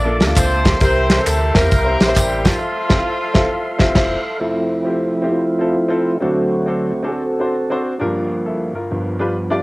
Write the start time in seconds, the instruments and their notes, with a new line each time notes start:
Already playing: sub bass A#1, tonewheel organ A#3 E5 A5 D6, horn section D4 F4 A4 D5
0.05 grand piano A#3 D4 F4 A4
0.20 sub bass D2, snare, closed hi-hat, tambourine
0.27 grand piano A#3 D4 F4 A4
0.35 sub bass C#2, horn section C4 F4 A4 C5, kick, clap, closed hi-hat, tambourine
0.65 kick, snare, closed hi-hat, tambourine
0.80 sub bass C2, grand piano C3 C4 E4 G4 A#4, horn section C4 E4 G4 C5, tonewheel organ A#4 E5 G5 C6, kick, closed hi-hat, tambourine
1.10 snare, clap, closed hi-hat, tambourine
1.17 grand piano C4 E4 G4 A4
1.26 sub bass D2, horn section A3 A4, clap, closed hi-hat, tambourine
1.54 sub bass E2, horn section A#3 E4 G4 A#4, grand piano C4 E4 G4 A#4, kick, snare, closed hi-hat, tambourine
1.71 sub bass C2, kick, closed hi-hat, tambourine
1.84 grand piano C4 E4 G4 C5
2.00 sub bass A#1, horn section C4 C5, snare, closed hi-hat, tambourine
2.06 grand piano C4 E4 G4 C5
2.15 sub bass A1, horn section G3 G4, kick, clap, closed hi-hat, tambourine
2.45 horn section F3 A3 C4 F4, kick, snare, closed hi-hat, tambourine
2.61 tonewheel organ A4 F5
2.89 sub bass F1, grand piano C4 E4 F4, kick, snare, crash
3.34 sub bass F1, grand piano C4 E4 F4 A4, kick, snare
3.79 sub bass F1, grand piano C4 E4 F4, kick, snare
3.95 sub bass F1, grand piano C4 E4 F4 C5, kick, snare, crash
4.39 grand piano F1 F2 C4 E4 F4 A4, tonewheel organ F3 A3 C4 E4
4.85 grand piano C4 E4 F4 G4
5.22 grand piano C4 E4 F4 G4
5.31 tonewheel organ A3 C4 F4
5.59 grand piano C4 E4 F4 A4
5.88 grand piano C4 E4 F4 A4
6.20 grand piano D2 D3 C4 D4 F#4 A4, tonewheel organ D3 F#3 A3 C4 F#4
6.66 grand piano C4 D4 F#4 A4
7.03 grand piano C4 D4 F#4 A4, tonewheel organ G#4
7.12 tonewheel organ C4 F#4 A4
7.40 grand piano C4 D4 F#4 C5
7.70 grand piano C4 D4 F#4 C5
8.00 grand piano G1 G2 D4 F4 G4 A#4, tonewheel organ G2 F3
8.04 tonewheel organ A#3
8.46 grand piano E4 A4
8.75 grand piano F4 A#4
8.91 grand piano G1 G2, tonewheel organ G2 F3 B3
9.19 grand piano D4 F4 G4 B4
9.50 grand piano D4 F4 G4 D5